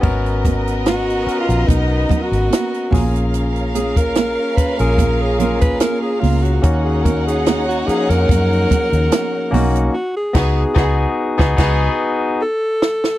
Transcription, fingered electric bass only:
X:1
M:4/4
L:1/16
Q:"Swing 16ths" 1/4=73
K:G#dor
V:1 name="Fingered electric bass" clef=bass
G,,,6 z A,,, B,,,2 z G,,, z2 A,,,2- | A,,,6 z A,,,4- A,,, z2 C,,2 | D,,6 z E,, F,,2 z D,, z2 B,,,2 | z2 C,,2 C,,2 z C,, C,,2 z6 |]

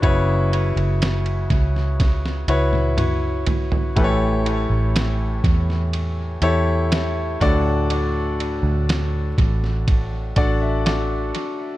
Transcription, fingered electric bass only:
X:1
M:4/4
L:1/16
Q:1/4=61
K:D
V:1 name="Fingered electric bass" clef=bass
F,,,3 F,,,3 C,,4 C,,4 z2 | A,,,3 A,,,3 E,,4 E,,4 D,,2- | D,,3 D,,3 A,,,4 A,,,4 z2 |]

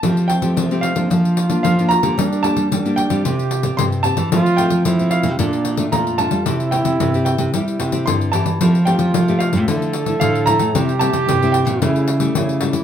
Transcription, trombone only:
X:1
M:4/4
L:1/8
Q:1/4=112
K:F
V:1 name="Trombone"
C4 F4 | D2 D2 G3 z | F2 E2 D2 F2 | E4 E3 z |
F4 A4 | G4 E2 E2 |]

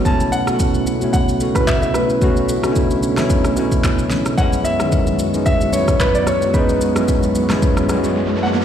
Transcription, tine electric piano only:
X:1
M:4/4
L:1/16
Q:"Swing 16ths" 1/4=111
K:F#phr
V:1 name="Tine electric piano"
[B,,F,A,CE]2 z [B,,F,A,CF]3 z [B,,F,A,CE]2 z [B,,F,A,CF]4- [B,,F,A,CF] z | [B,,F,A,CF]2 z [B,,F,A,CDE]3 z [B,,F,A,CE]2 z [B,,F,A,CE]4- [B,,F,A,CE] z | [F,,^G,B,CE]2 z [F,,^D,G,B,C]3 z [F,,G,B,C^D]2 z [F,,G,B,CE]4- [F,,G,B,CE] z | [F,,^G,B,C^D]2 z [F,,G,B,CE]3 z [F,,G,B,CE]2 z [F,,G,B,CEF]4- [F,,G,B,CEF] z |]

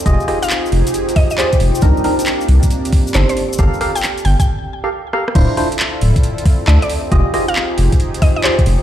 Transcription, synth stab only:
X:1
M:4/4
L:1/16
Q:"Swing 16ths" 1/4=136
K:Fmix
V:1 name="Synth stab"
[FG_Ae]2 [FGAe] z8 z [FGAd] z3 | [CDEB]2 [CDEB] z8 z [CDEA] z3 | [GABf]2 [GABf] z8 [GABf] z2 [GABf] z | [D=EFc]2 [DEFc] z8 z [DEFA] z3 |
[FG_Ae]2 [FGAe] z8 z [FGAd] z3 |]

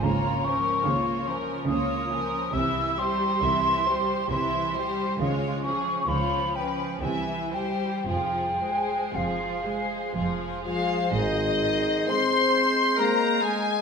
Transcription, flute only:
X:1
M:3/4
L:1/8
Q:1/4=67
K:Fm
V:1 name="Flute"
b d'2 z e'2 | =e' c'3 c'2 | z d' _c' g a g | g2 f3 f |
[K:Ab] e2 c'2 b a |]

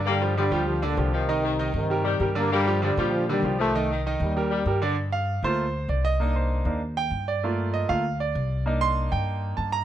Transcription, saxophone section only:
X:1
M:4/4
L:1/8
Q:1/4=195
K:Cdor
V:1 name="Saxophone section" clef=bass
B,2 F, G,4 F,- | F, E,4 G,3 | B,2 F, G,4 F,- | F, E,4 G,3 |
z8 | z8 | z8 | z8 |]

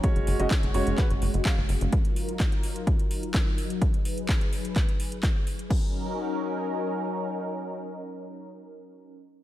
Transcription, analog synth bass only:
X:1
M:4/4
L:1/16
Q:1/4=127
K:F#
V:1 name="Analog synth bass" clef=bass
z F,,, F,,, F,,, z F,,, F,,, F,,, z F,,, F,,, F,,, z F,,, F,,, F,,, | z16 | z16 | z16 |
z16 |]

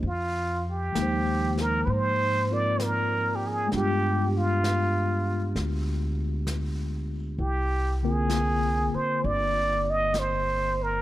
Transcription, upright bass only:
X:1
M:4/4
L:1/8
Q:"Swing" 1/4=65
K:Fdor
V:1 name="Upright bass" clef=bass
F,,2 E,,2 A,,4 | G,,4 D,,4 | C,,3 z G,,,4 |]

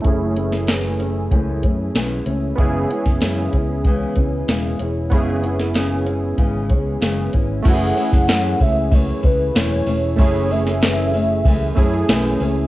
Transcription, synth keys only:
X:1
M:4/4
L:1/8
Q:1/4=95
K:F#m
V:1 name="Synth keys"
[A,CEG]8 | [B,CEG]8 | [B,CEG]8 | [A,CEFG]8 |
[A,CEG]4- [A,CEG] [A,CEG]3 |]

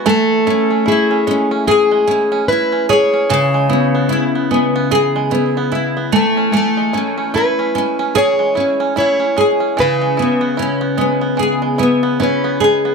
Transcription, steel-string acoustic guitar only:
X:1
M:4/4
L:1/8
Q:"Swing 16ths" 1/4=74
K:C#m
V:1 name="Steel-string acoustic guitar"
A2 G2 G2 B c- | c2 z6 | z2 B2 c2 c2 | B2 z4 B2 |]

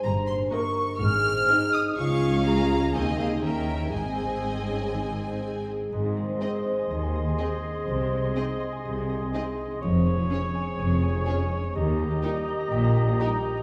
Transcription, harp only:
X:1
M:4/4
L:1/16
Q:1/4=124
K:Ab
V:1 name="Harp"
[G,,E]2 B,2 B2 E2 A,,2 C2 A2 E2 | D,2 D2 A2 F2 E,2 [EA]2 E,2 [_FB]2 | A,,2 C2 A2 E2 E,2 C2 A2 E2 | A,, E, C E A c e a e a e a e A E C |
C, C A, E A E e a e a e a e A E A, | F, A, D A D d a d a d a d a A D A, | E, B, E G B e g b g b g b g B G E |]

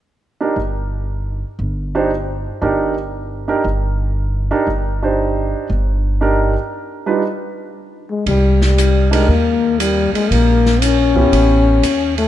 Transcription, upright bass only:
X:1
M:4/4
L:1/8
Q:"Swing" 1/4=117
K:Cm
V:1 name="Upright bass" clef=bass
z2 G,,,3 z G,,,2- | G,,, z G,,,3 z G,,,2- | G,,, z G,,,3 z G,,,2- | G,,, z6 z |
C,,4 E,,3 z | B,,,4 =A,,,2 E,,2 |]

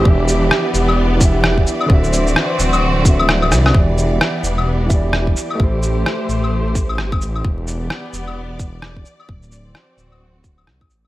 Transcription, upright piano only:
X:1
M:4/4
L:1/8
Q:"Swing 16ths" 1/4=130
K:Em
V:1 name="Upright piano"
[E,DGe]4- [E,DGe] [E,DGe]3 | [D,CFe]4- [D,CFe] [D,CFe]3 | [E,EGd]4- [E,EGd] [E,EGd]3 | [A,EGc]4- [A,EGc] z3 |
z8 | z8 |]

